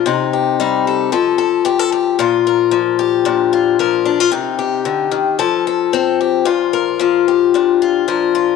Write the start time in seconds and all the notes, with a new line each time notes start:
0.06 C3 D#4
0.33 G4
0.60 G3 D#4
0.87 A4
1.12 F3 A4
1.38 A4
1.65 G4, muted steel-string acoustic guitar stroke
1.79 A4
1.92 G4
2.19 A#2 F4
2.47 A#4
2.71 F3
2.99 G4
3.25 A#2 D4
3.53 F4
3.79 F3 A#4
4.05 D4
4.20 F4
4.32 C3 D#4
4.59 G4
4.85 D3
5.11 D#3
5.39 F3 A4
5.67 A4
5.93 C4 A4
6.21 G4
6.45 A#2 F4
6.73 A#4
6.99 F3 F4
7.28 G4
7.54 A#2 D4
7.82 F4
8.08 F3 A#4
8.35 F4